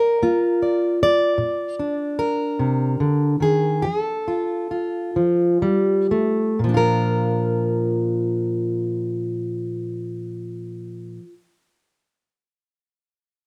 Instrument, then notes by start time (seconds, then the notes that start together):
steel-string acoustic guitar
Already playing: A#4 D5
0.23 A#3 F4
0.62 D5
1.03 D5
1.38 A#2
1.79 D4
2.19 A#4
2.59 C3
3.00 D3
3.40 D#3 G#4
3.82 F3 G#4
4.00 A4
4.28 F4
4.71 F4
5.16 F3
5.54 G#4
5.62 G3
5.66 G4
6.11 A3
6.59 A#2
6.64 F3
6.69 D4
6.74 F4 A#4